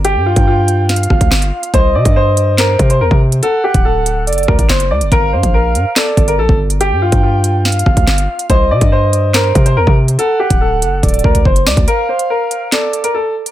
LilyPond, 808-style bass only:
\new Staff \with { instrumentName = "808-style bass" } { \clef bass \time 4/4 \key g \minor \tempo 4 = 142 g,,16 g,8 g,4.~ g,16 g,,16 d,16 g,,8 r8 | c,8 c16 g,4.~ g,16 c8 ees,16 c8. | r8. d,,4~ d,,16 fis,,8 d,16 a,,16 fis,,8 d,16 fis,,16 | g,,8 g,16 bes,,8. g,16 r8. g,,8 bes,,16 g,,8.~ |
g,,16 g,8 g,4.~ g,16 g,,16 d,16 g,,8 r8 | c,8 c16 g,4.~ g,16 c8 ees,16 c8. | r8. d,,8. fis,,8 d,,8 d,8 fis,,8 d,16 d,16 | r1 | }